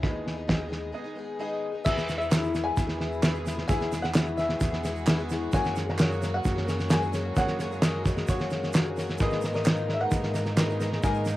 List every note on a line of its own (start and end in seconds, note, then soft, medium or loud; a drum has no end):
0.02 1.82 D#2 medium
0.02 0.90 D#2 medium
0.02 0.37 D#3 medium
0.02 1.82 D#3 medium
0.02 0.37 G#3 medium
0.02 0.41 B3 medium
0.02 0.38 B3 medium
0.02 0.41 D#4 medium
0.02 0.36 D#4 medium
0.02 0.42 G#4 medium
0.02 0.34 G#4 medium
0.02 0.42 D#5 medium
0.02 1.37 B5 medium
0.02 kick medium
0.02 snare soft
0.27 snare soft
0.35 0.47 B3 soft
0.35 0.48 D#4 soft
0.35 0.48 G#4 soft
0.47 0.60 D#3 medium
0.47 0.60 G#3 medium
0.47 0.87 B3 medium
0.47 0.60 B3 medium
0.47 0.87 D#4 medium
0.47 0.59 D#4 medium
0.47 0.87 G#4 medium
0.47 0.57 G#4 medium
0.47 0.88 D#5 medium
0.47 kick medium
0.47 snare loud
0.58 0.68 B3 soft
0.58 0.69 D#4 soft
0.58 0.71 G#4 medium
0.68 0.91 G#3 medium
0.68 0.92 B3 medium
0.68 0.93 D#4 medium
0.68 0.94 G#4 medium
0.68 snare soft
0.92 1.05 G#3 medium
0.92 1.05 B3 medium
0.92 1.33 B3 medium
0.92 1.33 D#4 medium
0.92 1.04 D#4 medium
0.92 1.33 G#4 medium
0.92 1.03 G#4 medium
0.92 1.33 D#5 medium
1.04 1.15 B3 soft
1.04 1.16 D#4 medium
1.04 1.17 G#4 medium
1.15 1.38 G#3 medium
1.15 1.39 B3 medium
1.15 1.40 D#4 medium
1.15 1.39 G#4 medium
1.39 1.74 D#3 medium
1.39 1.74 G#3 medium
1.39 1.79 B3 medium
1.39 1.74 B3 medium
1.39 1.79 D#4 medium
1.39 1.73 D#4 medium
1.39 1.79 G#4 medium
1.39 1.71 G#4 medium
1.39 1.79 D#5 medium
1.72 1.84 B3 soft
1.72 1.86 D#4 medium
1.72 1.85 G#4 medium
1.85 2.74 E2 loud
1.85 3.66 E2 medium
1.85 5.50 B2 medium
1.85 2.08 E3 medium
1.85 5.50 E3 medium
1.85 3.66 E3 medium
1.85 2.06 G#3 medium
1.85 11.37 G#3 medium
1.85 2.07 B3 medium
1.85 2.25 B3 loud
1.85 2.08 E4 medium
1.85 2.26 E4 medium
1.85 3.68 E4 medium
1.85 2.09 G#4 medium
1.85 5.50 G#4 medium
1.85 2.26 G#4 medium
1.85 2.17 E5 medium
1.85 2.26 E5 loud
1.85 kick loud
1.85 snare soft
1.85 crash loud
1.85 shaker medium
1.97 snare soft
1.97 shaker soft
2.07 2.20 G#3 medium
2.07 2.20 B3 medium
2.07 2.19 E4 medium
2.07 2.17 G#4 medium
2.07 snare soft
2.07 shaker medium
2.18 2.30 B3 soft
2.18 2.30 E4 soft
2.18 2.31 G#4 medium
2.18 2.67 E5 medium
2.18 shaker soft
2.29 2.54 E3 medium
2.29 2.52 G#3 medium
2.29 2.53 B3 medium
2.29 2.71 B3 medium
2.29 2.54 E4 medium
2.29 2.71 E4 medium
2.29 2.71 G#4 medium
2.29 2.54 G#4 medium
2.29 2.71 A#4 medium
2.29 snare loud
2.29 clap medium
2.29 shaker medium
2.43 shaker soft
2.53 2.65 G#3 medium
2.53 2.66 B3 soft
2.53 2.65 E4 medium
2.53 2.63 G#4 medium
2.53 snare soft
2.53 shaker medium
2.64 2.89 B3 soft
2.64 2.88 E4 soft
2.64 2.86 G#4 soft
2.64 3.67 G#5 loud
2.77 3.65 E2 medium
2.77 3.17 B3 medium
2.77 3.17 E4 medium
2.77 3.17 G#4 medium
2.77 3.17 E5 medium
2.77 kick medium
2.77 snare soft
2.77 shaker medium
2.87 2.98 B3 soft
2.87 2.99 E4 soft
2.87 3.00 G#4 medium
2.87 snare soft
2.98 3.22 G#3 medium
2.98 3.22 B3 medium
2.98 3.23 E4 medium
2.98 3.23 G#4 medium
2.98 snare soft
3.12 shaker soft
3.22 3.34 E3 medium
3.22 3.35 G#3 medium
3.22 3.62 B3 medium
3.22 3.35 B3 medium
3.22 3.63 E4 medium
3.22 3.33 E4 medium
3.22 3.63 G#4 medium
3.22 3.31 G#4 medium
3.22 3.63 E5 medium
3.22 snare loud
3.22 clap medium
3.22 shaker medium
3.33 3.45 B3 soft
3.33 3.46 E4 medium
3.33 3.45 G#4 medium
3.33 shaker soft
3.45 3.57 G#3 medium
3.45 3.58 B3 medium
3.45 3.58 E4 medium
3.45 3.55 G#4 medium
3.45 snare soft
3.45 shaker medium
3.57 3.68 B3 soft
3.57 3.68 E4 soft
3.57 3.69 G#4 soft
3.57 snare soft
3.68 5.49 E2 medium
3.68 4.57 E2 loud
3.68 3.92 E3 medium
3.68 5.49 E3 medium
3.68 3.91 G#3 medium
3.68 4.08 B3 medium
3.68 3.92 B3 medium
3.68 4.08 E4 medium
3.68 3.92 E4 medium
3.68 9.17 F#4 medium
3.68 4.08 G#4 medium
3.68 3.93 G#4 medium
3.68 4.08 E5 loud
3.68 4.04 G#5 medium
3.68 kick loud
3.68 snare soft
3.68 shaker medium
3.81 snare soft
3.81 shaker soft
3.92 4.04 G#3 medium
3.92 4.04 B3 medium
3.92 4.04 E4 medium
3.92 4.03 G#4 medium
3.92 snare soft
3.92 shaker medium
4.02 4.15 E4 soft
4.02 4.15 G#4 soft
4.02 4.37 F#5 medium
4.02 snare soft
4.02 shaker soft
4.07 4.15 B3 soft
4.14 4.38 E3 medium
4.14 4.37 G#3 medium
4.14 4.54 B3 medium
4.14 4.38 B3 medium
4.14 4.54 E4 medium
4.14 4.39 E4 medium
4.14 4.54 G#4 medium
4.14 4.39 G#4 medium
4.14 4.54 B4 medium
4.14 snare loud
4.14 clap medium
4.14 shaker medium
4.26 shaker soft
4.38 4.50 G#3 medium
4.38 4.50 B3 medium
4.38 4.51 E4 medium
4.38 4.49 G#4 medium
4.38 5.03 E5 medium
4.38 snare soft
4.38 shaker medium
4.49 4.73 E4 soft
4.49 4.71 G#4 soft
4.49 snare soft
4.53 4.75 B3 soft
4.60 5.49 E2 medium
4.60 5.00 B3 medium
4.60 5.00 E4 medium
4.60 5.00 G#4 medium
4.60 5.00 E5 medium
4.60 kick medium
4.60 snare soft
4.60 shaker medium
4.72 4.84 B3 soft
4.72 4.84 E4 soft
4.72 4.84 G#4 soft
4.72 snare soft
4.83 5.06 G#3 medium
4.83 5.07 B3 medium
4.83 5.07 E4 medium
4.83 5.07 G#4 medium
4.83 snare soft
4.83 shaker medium
4.96 shaker soft
5.06 5.19 E3 medium
5.06 5.19 G#3 medium
5.06 5.46 B3 medium
5.06 5.19 B3 medium
5.06 5.46 E4 medium
5.06 5.19 E4 medium
5.06 5.46 G#4 medium
5.06 5.17 G#4 loud
5.06 5.46 B4 medium
5.06 snare loud
5.06 clap medium
5.06 shaker medium
5.18 5.29 B3 medium
5.18 5.31 E4 medium
5.18 5.30 G#4 medium
5.18 shaker soft
5.29 5.52 G#3 medium
5.29 5.52 B3 medium
5.29 5.53 E4 medium
5.29 5.53 G#4 medium
5.29 snare soft
5.29 shaker medium
5.51 7.33 F#1 medium
5.51 6.41 F#2 loud
5.51 7.33 F#2 medium
5.51 9.17 C#3 medium
5.51 5.75 F#3 medium
5.51 9.17 F#3 medium
5.51 5.74 A#3 medium
5.51 5.92 A#3 loud
5.51 9.17 A#3 medium
5.51 5.75 C#4 medium
5.51 5.92 F#4 medium
5.51 5.76 F#4 medium
5.51 5.92 G#4 medium
5.51 5.76 G#4 medium
5.51 5.92 C#5 loud
5.51 5.86 G#5 medium
5.51 kick loud
5.51 snare soft
5.51 shaker medium
5.64 snare soft
5.64 shaker soft
5.75 5.87 A#3 medium
5.75 5.88 C#4 medium
5.75 5.86 F#4 medium
5.75 5.84 G#4 medium
5.75 snare soft
5.75 shaker medium
5.85 5.98 C#4 soft
5.85 5.99 F#4 soft
5.85 5.98 G#4 medium
5.85 snare soft
5.85 shaker soft
5.90 6.31 A#5 loud
5.98 6.21 F#3 medium
5.98 6.37 A#3 medium
5.98 6.19 A#3 medium
5.98 6.20 C#4 medium
5.98 6.38 F#4 medium
5.98 6.21 F#4 medium
5.98 6.38 G#4 medium
5.98 6.22 G#4 medium
5.98 6.38 C#5 medium
5.98 snare loud
5.98 clap medium
5.98 shaker medium
6.11 shaker soft
6.20 6.33 A#3 medium
6.20 6.33 C#4 medium
6.20 6.33 F#4 medium
6.20 6.31 G#4 medium
6.20 snare soft
6.20 shaker medium
6.32 6.57 C#4 soft
6.32 6.56 F#4 soft
6.32 6.54 G#4 soft
6.32 6.90 F#5 loud
6.44 7.33 F#2 medium
6.44 6.84 A#3 medium
6.44 6.84 F#4 medium
6.44 6.84 G#4 medium
6.44 6.84 C#5 medium
6.44 kick medium
6.44 snare soft
6.44 shaker medium
6.55 6.66 C#4 soft
6.55 6.67 F#4 soft
6.55 6.67 G#4 soft
6.55 snare soft
6.66 6.89 A#3 medium
6.66 6.89 C#4 medium
6.66 6.90 F#4 medium
6.66 6.90 G#4 medium
6.66 snare soft
6.66 shaker medium
6.79 snare soft
6.79 shaker soft
6.89 7.01 F#3 medium
6.89 7.02 A#3 medium
6.89 7.30 A#3 medium
6.89 7.02 C#4 medium
6.89 7.01 F#4 medium
6.89 7.30 F#4 medium
6.89 6.99 G#4 medium
6.89 7.30 G#4 medium
6.89 7.30 C#5 medium
6.89 7.34 G#5 loud
6.89 snare loud
6.89 clap medium
6.89 shaker medium
7.00 7.12 C#4 soft
7.00 7.13 F#4 soft
7.00 7.13 G#4 medium
7.00 shaker soft
7.12 7.34 A#3 medium
7.12 7.35 C#4 medium
7.12 7.35 F#4 medium
7.12 7.36 G#4 medium
7.12 snare soft
7.12 shaker medium
7.34 9.17 F#1 medium
7.34 8.25 F#2 loud
7.34 9.17 F#2 medium
7.34 7.58 F#3 medium
7.34 7.57 A#3 medium
7.34 7.76 A#3 loud
7.34 7.58 C#4 medium
7.34 7.59 F#4 medium
7.34 7.76 F#4 medium
7.34 7.76 G#4 medium
7.34 7.60 G#4 medium
7.34 7.76 C#5 loud
7.34 7.80 F#5 medium
7.34 kick loud
7.34 snare soft
7.34 shaker medium
7.48 snare soft
7.48 shaker soft
7.58 7.70 A#3 medium
7.58 7.71 C#4 medium
7.58 7.71 F#4 medium
7.58 7.69 G#4 medium
7.58 snare soft
7.58 shaker medium
7.70 7.82 C#4 soft
7.70 7.82 F#4 medium
7.70 7.82 G#4 medium
7.70 shaker soft
7.82 8.05 F#3 medium
7.82 8.21 A#3 medium
7.82 8.03 A#3 medium
7.82 8.05 C#4 medium
7.82 8.21 F#4 medium
7.82 8.05 F#4 medium
7.82 8.21 G#4 medium
7.82 8.06 G#4 medium
7.82 8.30 D#5 medium
7.82 8.22 D#5 medium
7.82 snare loud
7.82 clap medium
7.82 shaker medium
8.04 8.16 A#3 medium
8.04 8.17 C#4 medium
8.04 8.17 F#4 medium
8.04 8.15 G#4 medium
8.04 kick medium
8.04 snare soft
8.04 shaker medium
8.17 8.41 C#4 soft
8.17 8.40 F#4 soft
8.17 8.38 G#4 soft
8.17 snare soft
8.17 shaker soft
8.28 9.16 F#2 medium
8.28 8.68 A#3 medium
8.28 8.68 F#4 medium
8.28 8.68 G#4 medium
8.28 8.94 C#5 medium
8.28 8.68 C#5 medium
8.28 kick medium
8.28 snare soft
8.28 shaker medium
8.39 8.50 C#4 soft
8.39 8.51 F#4 soft
8.39 8.51 G#4 soft
8.39 snare soft
8.39 shaker soft
8.50 8.74 A#3 medium
8.50 8.74 C#4 medium
8.50 8.75 F#4 medium
8.50 8.76 G#4 medium
8.50 snare soft
8.50 shaker medium
8.63 snare soft
8.63 shaker soft
8.73 8.86 F#3 medium
8.73 9.13 A#3 medium
8.73 8.86 A#3 medium
8.73 8.86 C#4 medium
8.73 9.13 F#4 medium
8.73 8.87 F#4 medium
8.73 9.14 G#4 medium
8.73 8.85 G#4 medium
8.73 9.14 A#4 medium
8.73 snare loud
8.73 clap medium
8.73 shaker medium
8.85 8.98 F#4 soft
8.85 8.98 G#4 medium
8.85 shaker soft
8.90 8.96 C#4 soft
8.96 9.20 A#3 medium
8.96 9.21 C#4 medium
8.96 9.21 F#4 medium
8.96 snare soft
8.96 shaker medium
9.00 9.22 G#4 medium
9.10 snare soft
9.18 11.00 G#1 medium
9.18 9.43 G#2 medium
9.18 10.08 G#2 loud
9.18 11.00 G#2 medium
9.18 9.59 A#2 medium
9.18 11.02 A#2 medium
9.18 9.43 D#3 medium
9.18 11.37 D#3 medium
9.18 9.41 G#3 medium
9.18 9.43 B3 medium
9.18 11.37 D#4 medium
9.18 9.60 D#4 medium
9.18 9.44 D#4 medium
9.18 9.60 G#4 medium
9.18 9.60 B4 loud
9.18 kick loud
9.18 snare soft
9.18 shaker medium
9.22 9.44 A#4 medium
9.22 9.53 D#5 medium
9.30 snare soft
9.30 shaker soft
9.41 9.54 G#3 medium
9.41 9.55 B3 medium
9.41 9.55 D#4 medium
9.41 snare soft
9.41 shaker medium
9.45 9.53 A#4 medium
9.53 9.66 B3 soft
9.53 9.67 D#4 soft
9.53 9.66 A#4 medium
9.53 9.93 D#5 medium
9.53 snare soft
9.53 shaker soft
9.58 9.66 G#3 soft
9.65 9.89 G#2 medium
9.65 10.05 A#2 medium
9.65 9.89 D#3 medium
9.65 9.87 G#3 medium
9.65 9.89 B3 medium
9.65 10.05 D#4 medium
9.65 9.90 D#4 medium
9.65 10.05 G#4 medium
9.65 9.90 A#4 medium
9.65 10.05 B4 medium
9.65 snare loud
9.65 clap medium
9.65 shaker medium
9.76 shaker soft
9.88 10.00 G#3 medium
9.88 10.01 B3 medium
9.88 10.00 D#4 medium
9.88 9.98 A#4 medium
9.88 snare soft
9.93 10.01 E5 medium
10.00 10.23 G#3 soft
10.00 10.23 B3 soft
10.00 10.21 D#4 soft
10.00 10.21 A#4 soft
10.00 11.03 F#5 medium
10.11 11.00 G#2 medium
10.11 10.51 A#2 medium
10.11 10.51 D#4 medium
10.11 10.51 G#4 medium
10.11 10.51 B4 medium
10.11 kick medium
10.11 snare soft
10.11 shaker medium
10.22 10.32 G#3 soft
10.22 10.34 B3 soft
10.22 10.35 D#4 soft
10.22 10.34 A#4 soft
10.22 snare soft
10.34 10.57 G#3 medium
10.34 10.58 B3 medium
10.34 10.58 D#4 medium
10.34 10.58 A#4 medium
10.34 snare soft
10.34 shaker medium
10.46 snare soft
10.46 shaker soft
10.57 10.69 G#2 medium
10.57 10.97 A#2 medium
10.57 10.69 D#3 medium
10.57 10.70 G#3 medium
10.57 10.70 B3 medium
10.57 10.97 D#4 medium
10.57 10.69 D#4 medium
10.57 10.97 G#4 medium
10.57 10.68 A#4 medium
10.57 10.97 B4 medium
10.57 snare loud
10.57 clap medium
10.57 shaker medium
10.69 10.79 G#3 soft
10.69 10.80 B3 medium
10.69 10.81 D#4 medium
10.69 10.81 A#4 medium
10.69 shaker soft
10.80 10.92 G#3 medium
10.80 10.92 B3 medium
10.80 10.91 D#4 medium
10.80 10.90 A#4 medium
10.80 snare soft
10.80 shaker medium
10.91 11.04 B3 soft
10.91 11.04 D#4 soft
10.91 11.03 A#4 soft
10.91 snare soft
10.95 11.04 G#3 soft
11.03 11.37 G#1 medium
11.03 11.27 G#2 medium
11.03 11.37 G#2 loud
11.03 11.37 G#2 medium
11.03 11.27 D#3 medium
11.03 11.25 G#3 medium
11.03 11.37 A#3 loud
11.03 11.26 B3 medium
11.03 11.37 D#4 medium
11.03 11.27 D#4 medium
11.03 11.37 G#4 medium
11.03 11.37 A#4 loud
11.03 11.28 A#4 medium
11.03 11.37 G#5 medium
11.03 kick loud
11.03 snare soft
11.03 shaker medium
11.14 shaker soft
11.25 11.37 G#3 medium
11.25 11.37 B3 medium
11.25 11.37 D#4 medium
11.25 snare soft
11.25 shaker medium
11.29 11.36 A#4 medium